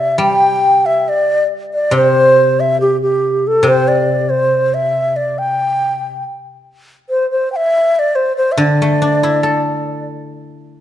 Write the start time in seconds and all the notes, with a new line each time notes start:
Already playing: C3
0.00 E5
0.18 G3 G5
0.86 E5
1.09 D5
1.74 D5
1.91 C3
1.96 C5
2.60 E5
2.81 G4
3.02 G4
3.47 A4
3.63 C3
3.68 C5
3.88 D5
4.30 C5
4.74 E5
5.16 D5
5.38 G5
7.10 C5
7.31 C5
7.52 E5 G5
7.95 D5 E5
8.15 C5
8.37 C5
8.52 E5
8.57 D3 D5
8.82 A3
9.02 D4
9.23 E4
9.43 A4